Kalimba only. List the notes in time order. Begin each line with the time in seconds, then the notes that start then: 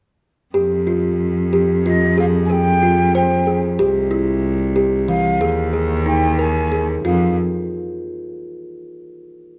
0.54 G4
0.87 F4
1.53 G4
1.86 F4
2.18 G#4
2.50 G#4
2.83 F4
3.15 C5
3.47 G#4
3.79 G4
4.11 E4
4.76 G4
5.08 E3
5.41 G#4
5.73 G#4
6.06 D#4
6.39 A#4
6.72 G#4
7.05 F4